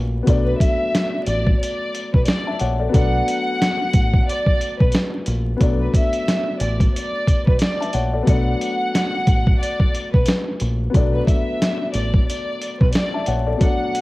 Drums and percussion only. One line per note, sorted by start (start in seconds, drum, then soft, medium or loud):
0.27 kick loud
0.27 closed hi-hat medium
0.60 kick loud
0.60 closed hi-hat medium
0.95 snare loud
0.95 closed hi-hat loud
1.27 closed hi-hat medium
1.47 kick medium
1.63 closed hi-hat medium
1.95 closed hi-hat medium
2.14 kick medium
2.25 snare loud
2.25 closed hi-hat medium
2.59 closed hi-hat medium
2.94 kick loud
2.94 closed hi-hat medium
3.28 closed hi-hat medium
3.62 snare loud
3.62 closed hi-hat loud
3.93 kick loud
3.93 closed hi-hat medium
4.13 kick medium
4.29 closed hi-hat medium
4.46 kick medium
4.61 closed hi-hat medium
4.80 kick medium
4.92 snare loud
4.92 closed hi-hat medium
5.26 closed hi-hat medium
5.61 kick loud
5.61 closed hi-hat medium
5.94 kick loud
5.94 closed hi-hat medium
6.13 closed hi-hat medium
6.28 snare loud
6.28 closed hi-hat loud
6.60 closed hi-hat medium
6.80 kick medium
6.80 closed hi-hat medium
6.96 closed hi-hat medium
7.27 kick medium
7.27 closed hi-hat medium
7.47 kick medium
7.59 snare loud
7.59 closed hi-hat medium
7.82 closed hi-hat medium
7.93 closed hi-hat medium
8.27 kick loud
8.27 closed hi-hat medium
8.61 closed hi-hat medium
8.95 snare loud
8.95 closed hi-hat loud
9.27 kick loud
9.27 closed hi-hat medium
9.47 kick medium
9.63 closed hi-hat medium
9.80 kick medium
9.95 closed hi-hat medium
10.14 kick medium
10.26 snare loud
10.26 closed hi-hat medium
10.60 closed hi-hat medium
10.94 kick loud
10.94 closed hi-hat medium
11.27 kick medium
11.27 closed hi-hat medium
11.62 snare loud
11.62 closed hi-hat loud
11.94 closed hi-hat medium
12.14 kick medium
12.30 closed hi-hat medium
12.61 closed hi-hat medium
12.81 kick medium
12.92 snare loud
12.92 closed hi-hat medium
13.26 closed hi-hat medium
13.61 kick loud
13.61 closed hi-hat medium
13.95 closed hi-hat medium